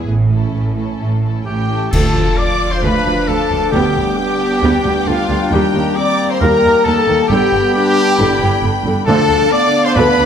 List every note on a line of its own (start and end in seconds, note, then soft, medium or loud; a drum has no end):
0.06 0.48 A1 soft
0.06 0.48 A2 medium
0.30 0.76 C#4 soft
0.30 0.76 E4 soft
0.30 0.75 A4 soft
0.53 0.95 A1 medium
0.53 0.95 A2 medium
0.77 1.22 C#4 soft
0.77 1.22 E4 soft
0.77 1.22 A4 soft
1.00 1.41 A1 soft
1.00 1.41 A2 soft
1.24 1.68 C#4 soft
1.24 1.69 E4 soft
1.24 1.46 A4 soft
1.45 1.88 A1 soft
1.45 1.87 A2 soft
1.45 1.89 G4 medium
1.45 1.95 G4 medium
1.45 1.90 G4 medium
1.45 1.89 G5 medium
1.69 1.92 C#4 soft
1.69 1.93 E4 soft
1.69 1.93 A4 soft
1.91 2.01 D2 medium
1.91 2.57 D3 medium
1.91 3.70 F3 medium
1.91 2.14 A3 medium
1.91 3.69 D4 medium
1.91 2.79 F4 medium
1.91 3.70 F4 medium
1.91 2.39 A4 medium
1.91 2.40 A4 medium
1.91 2.39 A4 medium
1.91 3.70 F5 medium
1.91 2.37 A5 medium
1.91 5.49 D6 medium
1.91 concert bass drum medium
1.91 crash medium
2.15 2.23 D2 medium
2.15 2.24 D2 medium
2.15 2.25 F3 medium
2.37 2.73 D5 medium
2.37 2.72 D5 loud
2.37 2.74 D5 medium
2.37 2.72 D6 medium
2.71 2.82 C5 medium
2.71 2.84 C5 medium
2.71 2.83 C5 medium
2.71 2.83 C6 medium
2.82 2.91 D2 medium
2.82 2.92 D2 medium
2.82 3.04 A3 medium
2.82 3.71 D4 medium
2.82 3.29 B4 medium
2.82 3.28 B4 loud
2.82 3.29 B4 medium
2.82 3.29 B5 medium
3.05 3.13 D2 medium
3.05 3.15 D2 medium
3.05 3.14 F3 medium
3.28 3.36 D2 medium
3.28 3.38 D2 soft
3.28 3.38 D3 medium
3.28 3.72 A4 medium
3.28 3.71 A4 medium
3.28 3.73 A4 medium
3.28 3.73 A5 medium
3.51 3.59 D2 soft
3.51 3.60 D2 medium
3.51 3.60 F3 medium
3.72 3.81 D2 medium
3.72 3.82 D2 medium
3.72 4.36 D3 medium
3.72 7.26 G3 medium
3.72 5.48 B3 medium
3.72 4.17 B3 medium
3.72 3.94 B3 medium
3.72 5.52 D4 medium
3.72 4.16 G4 medium
3.72 4.17 G4 medium
3.72 4.15 G5 medium
3.72 7.29 G5 medium
3.95 4.03 D2 medium
3.95 4.05 D2 medium
3.95 4.05 G3 medium
4.17 5.06 B3 medium
4.17 5.05 G4 medium
4.17 5.08 G4 medium
4.17 5.05 G4 medium
4.17 5.05 G5 medium
4.62 4.70 D2 medium
4.62 4.71 D2 medium
4.62 4.84 B3 medium
4.84 4.92 D2 medium
4.84 4.93 D2 medium
4.84 4.93 G3 medium
5.06 5.15 D2 medium
5.06 5.15 D3 medium
5.06 5.98 D4 medium
5.06 5.54 F4 medium
5.06 5.52 F4 medium
5.06 5.53 F4 loud
5.06 5.52 F5 medium
5.29 5.37 D2 medium
5.29 5.38 G3 medium
5.52 5.60 D#2 medium
5.52 5.73 D#3 medium
5.52 5.73 G3 medium
5.52 7.26 A#3 medium
5.52 5.98 G4 medium
5.52 5.96 G5 medium
5.52 7.30 A#5 medium
5.74 5.82 D#2 medium
5.74 5.83 D#2 medium
5.74 5.83 D#3 medium
5.96 6.41 C4 medium
5.96 6.30 D5 loud
5.96 6.32 D5 loud
5.96 6.31 D5 loud
5.96 6.30 D6 medium
6.30 6.40 C5 medium
6.30 6.42 C5 medium
6.30 6.42 C6 medium
6.41 6.50 D#2 medium
6.41 6.50 D#2 loud
6.41 6.62 G3 medium
6.41 7.32 A#3 medium
6.41 6.83 A#4 medium
6.41 6.86 A#4 medium
6.41 6.85 A#4 loud
6.41 6.86 A#5 loud
6.64 6.72 D#2 medium
6.64 6.72 D#3 medium
6.84 6.94 D#2 medium
6.84 6.95 D#2 medium
6.84 6.95 D#3 medium
6.84 7.27 A4 medium
6.84 7.29 A4 loud
6.84 7.30 A4 loud
6.84 7.31 A5 medium
7.08 7.16 D#2 medium
7.08 7.17 D#2 medium
7.08 7.17 D#3 medium
7.28 7.38 G1 loud
7.28 7.39 G2 loud
7.28 7.51 D3 medium
7.28 9.04 G3 medium
7.28 9.04 B3 medium
7.28 7.78 B3 medium
7.28 9.07 D4 medium
7.28 7.73 G4 loud
7.28 7.73 G4 medium
7.28 7.74 G4 loud
7.28 7.73 G5 medium
7.28 9.04 G5 medium
7.28 9.07 B5 medium
7.52 7.61 G1 medium
7.52 7.60 G2 medium
7.52 7.61 D3 medium
7.74 8.21 D4 medium
7.74 8.61 G4 loud
7.74 8.62 G4 loud
7.74 8.62 G5 medium
8.19 8.27 G1 loud
8.19 8.28 G2 loud
8.19 8.40 D3 medium
8.19 8.80 E4 medium
8.41 8.49 G1 medium
8.41 8.50 G2 medium
8.41 8.51 D3 medium
8.63 8.71 G1 medium
8.63 8.72 G2 medium
8.63 8.72 D3 medium
8.85 8.93 G1 medium
8.85 8.94 G2 medium
8.85 8.94 D3 medium
9.06 9.15 D2 loud
9.06 9.17 D2 loud
9.06 9.70 D3 loud
9.06 9.27 D3 loud
9.06 9.23 F3 medium
9.06 9.48 D4 medium
9.06 9.23 D4 medium
9.06 10.26 D4 medium
9.06 9.54 A4 loud
9.06 9.53 A4 medium
9.06 9.49 A4 loud
9.06 10.26 F5 medium
9.06 9.49 A5 loud
9.06 10.26 D6 loud
9.29 9.37 D2 medium
9.29 9.39 D2 medium
9.29 9.37 D3 medium
9.51 10.26 B3 loud
9.51 9.84 D5 loud
9.51 9.85 D5 loud
9.51 9.86 D5 loud
9.51 9.85 D6 loud
9.85 9.90 C5 loud
9.85 9.98 C5 loud
9.85 9.97 C5 loud
9.85 9.96 C6 loud
9.95 10.04 D2 loud
9.95 10.05 D2 loud
9.95 10.17 D3 loud
9.95 10.11 F3 medium
9.95 10.11 D4 medium
9.95 10.26 B4 loud
9.95 10.26 B5 loud
10.18 10.26 D2 medium
10.18 10.26 D3 medium